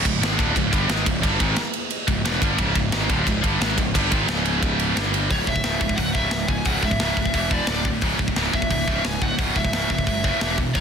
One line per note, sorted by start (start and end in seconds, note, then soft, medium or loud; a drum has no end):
0.05 0.20 C#1 medium
0.05 0.18 C#2 medium
0.05 0.18 G#2 medium
0.05 kick loud
0.05 ride medium
0.20 0.37 G#1 medium
0.20 0.38 G#2 loud
0.20 0.38 D#3 loud
0.20 0.39 G#3 loud
0.20 snare loud
0.20 ride loud
0.38 0.54 D1 medium
0.38 0.55 D2 medium
0.38 0.55 A2 medium
0.38 0.55 D3 loud
0.38 kick loud
0.38 ride medium
0.55 0.71 C#1 medium
0.55 0.69 C#2 medium
0.55 0.69 G#2 medium
0.55 kick medium
0.55 ride medium
0.72 0.88 G1 medium
0.72 0.88 G2 medium
0.72 0.88 D3 medium
0.72 0.89 G3 loud
0.72 kick loud
0.72 ride medium
0.89 1.05 G#1 loud
0.89 1.05 G#2 medium
0.89 1.05 D#3 medium
0.89 1.06 G#3 loud
0.89 snare loud
0.89 ride loud
1.06 1.22 C#1 medium
1.06 1.20 C#2 medium
1.06 1.20 G#2 medium
1.06 kick loud
1.06 ride medium
1.22 1.39 G1 loud
1.22 1.39 G2 loud
1.22 1.40 D3 loud
1.22 1.40 G3 loud
1.22 kick loud
1.22 ride loud
1.40 1.56 G#1 loud
1.40 1.56 G#2 medium
1.40 1.57 D#3 loud
1.40 1.57 G#3 medium
1.40 kick loud
1.40 ride medium
1.56 snare loud
1.56 ride loud
1.73 ride medium
1.90 ride medium
2.08 2.23 C#1 medium
2.08 2.21 C#2 medium
2.08 2.21 G#2 medium
2.08 kick medium
2.08 ride medium
2.24 2.40 E1 loud
2.24 2.41 E2 medium
2.24 2.42 B2 medium
2.24 2.42 E3 loud
2.24 snare loud
2.24 ride loud
2.41 2.57 G1 medium
2.41 2.58 G2 medium
2.41 2.59 D3 loud
2.41 2.59 G3 medium
2.41 kick loud
2.41 ride medium
2.58 2.74 C#1 loud
2.58 2.74 C#2 loud
2.58 2.75 G#2 loud
2.58 2.76 C#3 loud
2.58 kick loud
2.58 ride loud
2.75 2.91 C#1 medium
2.75 2.89 C#2 medium
2.75 2.89 G#2 medium
2.75 kick loud
2.75 ride medium
2.92 3.08 G#1 loud
2.92 3.08 G#2 loud
2.92 3.09 D#3 loud
2.92 3.10 G#3 loud
2.92 snare loud
2.92 ride loud
3.09 3.25 D1 medium
3.09 3.26 D2 medium
3.09 3.26 A2 medium
3.09 3.26 D3 medium
3.09 kick loud
3.09 ride medium
3.26 3.42 C#1 medium
3.26 3.40 C#2 medium
3.26 3.40 G#2 medium
3.26 kick medium
3.26 ride loud
3.44 3.60 G1 loud
3.44 3.60 G2 medium
3.44 3.60 D3 medium
3.44 3.61 G3 medium
3.44 kick loud
3.44 ride medium
3.61 3.76 G#1 loud
3.61 3.77 G#2 medium
3.61 3.77 D#3 medium
3.61 3.77 G#3 loud
3.61 snare loud
3.61 ride loud
3.78 3.93 C#1 medium
3.78 3.91 C#2 medium
3.78 3.91 G#2 medium
3.78 kick medium
3.78 ride medium
3.94 4.11 G1 loud
3.94 4.10 G2 medium
3.94 4.11 D3 loud
3.94 4.11 G3 loud
3.94 kick loud
3.94 ride loud
4.11 4.27 G#1 loud
4.11 4.27 G#2 medium
4.11 4.28 D#3 medium
4.11 4.28 G#3 medium
4.11 kick loud
4.11 ride medium
4.28 4.92 C#1 loud
4.28 4.95 C#2 medium
4.28 4.96 G#2 loud
4.28 4.96 C#3 loud
4.28 snare loud
4.28 ride loud
4.46 ride medium
4.63 kick loud
4.63 ride medium
4.80 ride medium
4.96 5.28 G1 loud
4.96 5.30 G2 medium
4.96 5.30 D3 medium
4.96 5.30 G3 medium
4.96 snare loud
4.96 ride loud
5.14 ride medium
5.30 5.42 C#1 loud
5.30 5.46 C#2 medium
5.30 5.46 G#2 medium
5.30 5.47 C#3 medium
5.30 5.48 C#5 medium
5.30 kick loud
5.30 open hi-hat medium
5.47 5.59 C#1 medium
5.47 5.63 C#2 medium
5.47 5.63 G#2 medium
5.47 5.95 E5 medium
5.47 kick medium
5.56 kick medium
5.64 5.75 C#1 medium
5.64 5.80 C#2 loud
5.64 5.80 G#2 medium
5.64 5.81 C#3 loud
5.64 snare loud
5.64 open hi-hat medium
5.81 5.92 C#1 medium
5.81 5.96 C#2 medium
5.81 5.97 G#2 medium
5.81 kick medium
5.89 kick medium
5.97 6.10 C#1 loud
5.97 6.14 C#2 medium
5.97 6.14 G#2 medium
5.97 6.13 F#5 medium
5.97 kick medium
5.97 open hi-hat soft
6.14 6.26 C#1 medium
6.14 6.31 C#2 medium
6.14 6.32 G#2 medium
6.14 6.32 C#3 medium
6.14 6.48 E5 medium
6.14 kick medium
6.31 6.43 C#1 medium
6.31 6.48 C#2 medium
6.31 6.48 G#2 medium
6.31 snare loud
6.31 open hi-hat medium
6.48 6.60 C#1 medium
6.48 6.65 C#2 medium
6.48 6.65 G#2 medium
6.48 6.66 G#5 loud
6.48 kick medium
6.65 6.77 C#1 loud
6.65 6.82 C#2 medium
6.65 6.83 G#2 medium
6.65 6.83 C#3 loud
6.65 6.83 F#5 loud
6.65 kick loud
6.65 open hi-hat medium
6.83 6.94 C#1 medium
6.83 6.99 C#2 medium
6.83 6.99 G#2 medium
6.83 7.34 E5 medium
6.83 kick medium
6.91 kick medium
7.00 7.12 C#1 medium
7.00 7.17 C#2 loud
7.00 7.17 G#2 loud
7.00 7.17 C#3 loud
7.00 snare loud
7.00 open hi-hat medium
7.17 7.28 C#1 medium
7.17 7.33 C#2 medium
7.17 7.33 G#2 medium
7.17 kick medium
7.26 kick medium
7.34 7.57 E1 loud
7.34 7.50 E2 medium
7.34 7.51 B2 medium
7.34 7.51 E3 medium
7.34 7.52 E5 medium
7.34 kick medium
7.34 open hi-hat medium
7.51 7.67 E2 loud
7.51 7.68 B2 loud
7.51 7.68 E3 loud
7.51 7.86 D5 medium
7.51 kick medium
7.67 7.91 D1 medium
7.67 7.85 D2 medium
7.67 7.85 A2 medium
7.67 7.86 D3 medium
7.67 snare loud
7.67 open hi-hat medium
7.85 8.02 D2 medium
7.85 8.02 A2 medium
7.85 kick loud
8.01 8.14 C#1 loud
8.01 8.18 C#2 medium
8.01 8.19 G#2 medium
8.01 8.19 C#3 loud
8.01 kick loud
8.01 open hi-hat medium
8.19 8.31 C#1 medium
8.19 8.35 C#2 medium
8.19 8.35 G#2 medium
8.19 kick medium
8.28 kick medium
8.36 8.48 C#1 loud
8.36 8.53 C#2 loud
8.36 8.53 G#2 loud
8.36 8.53 C#3 loud
8.36 snare loud
8.36 open hi-hat medium
8.54 8.65 C#1 medium
8.54 8.69 C#2 medium
8.54 8.69 G#2 medium
8.54 9.07 E5 loud
8.54 kick medium
8.62 kick medium
8.70 8.82 C#1 loud
8.70 8.86 C#2 medium
8.70 8.86 G#2 medium
8.70 kick medium
8.70 open hi-hat medium
8.87 8.99 C#1 medium
8.87 9.04 C#2 medium
8.87 9.04 G#2 medium
8.87 9.04 C#3 loud
8.87 kick medium
9.04 9.16 C#1 loud
9.04 9.20 C#2 medium
9.04 9.20 G#2 medium
9.04 9.21 G#5 loud
9.04 snare loud
9.04 open hi-hat medium
9.21 9.33 C#1 medium
9.21 9.37 C#2 medium
9.21 9.38 G#2 medium
9.21 9.54 F#5 loud
9.21 kick medium
9.38 9.50 C#1 medium
9.38 9.55 C#2 medium
9.38 9.55 G#2 medium
9.38 9.56 C#3 loud
9.38 kick loud
9.38 open hi-hat medium
9.56 9.67 C#1 medium
9.56 9.71 C#2 medium
9.56 9.72 G#2 medium
9.56 9.90 E5 loud
9.56 kick medium
9.64 kick medium
9.72 9.84 C#1 medium
9.72 9.89 C#2 medium
9.72 9.90 G#2 loud
9.72 9.90 C#3 loud
9.72 snare loud
9.72 open hi-hat medium
9.90 10.02 C#1 medium
9.90 10.06 C#2 medium
9.90 10.06 G#2 medium
9.90 10.55 E5 medium
9.90 kick medium
9.98 kick medium
10.07 10.30 F#1 loud
10.07 10.23 C#2 medium
10.07 10.23 G#2 medium
10.07 kick medium
10.07 open hi-hat medium
10.24 10.40 C#2 medium
10.24 10.40 G#2 medium
10.24 10.41 C#3 loud
10.24 kick medium
10.41 10.64 E1 loud
10.41 10.57 E2 medium
10.41 10.58 B2 medium
10.41 10.58 E3 loud
10.41 snare loud
10.41 open hi-hat medium
10.58 10.74 E2 medium
10.58 10.74 B2 medium
10.58 kick loud
10.74 10.80 C#1 loud
10.74 10.80 C#2 medium
10.74 10.80 G#2 medium
10.74 10.80 C#3 loud
10.74 10.79 C#5 medium
10.74 kick loud
10.74 open hi-hat medium